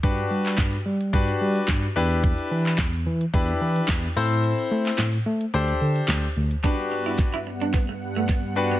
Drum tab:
HH |xx-xxx-xxx-xxx-x|xx-xxx-xxx-xxx-x|xx-xxx-xxx-xxx-x|----------------|
CP |---xx-------x---|---xx-------x---|---xx-------x---|----------------|
SD |----o-------o---|----o-------o---|----o-------o---|o---o---o---o---|
BD |o---o---o---o---|o---o---o---o---|----------------|o---o---o---o---|